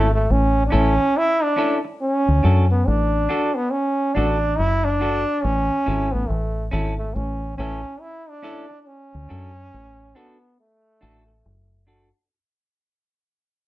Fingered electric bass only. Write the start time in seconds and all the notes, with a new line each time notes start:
Already playing: G#1
0.30 A1
0.73 A1
2.28 D2
2.44 F#2
2.88 A1
4.17 A1
4.59 F#1
5.44 A1
5.88 G#1
6.14 A1
6.30 A1
6.73 G#1
7.16 A1
7.59 A1
9.15 D2
9.31 F#2
9.74 A1
11.03 A1
11.46 F#1